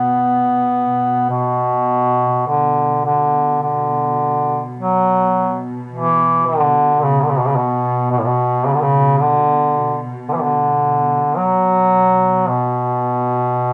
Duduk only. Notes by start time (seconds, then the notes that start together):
Already playing: B3
1.30 B2
2.48 D3
3.05 D3
3.62 D3
4.80 F#3
5.92 E3
6.47 D3
7.03 C#3
7.22 D3
7.29 C#3
7.39 B2
7.48 C#3
7.56 B2
8.11 B2
8.18 A2
8.26 B2
8.67 C#3
8.74 D3
8.82 C#3
9.20 D3
10.29 D3
10.34 E3
10.43 D3
11.37 F#3
12.48 B2